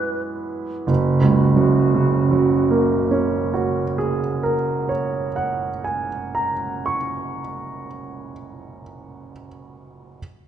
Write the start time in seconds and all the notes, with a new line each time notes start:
Already playing: F#2 E3 G#3 B3 B4
0.86 F#1 F#4
1.21 C#2
1.56 F#2
1.94 C#3
2.31 F#3
2.71 A#3
3.11 C#4
3.54 F#4
3.98 G#4
4.43 A#4
4.89 C#5
5.36 F#5
5.84 G#5
6.35 A#5
6.86 C#6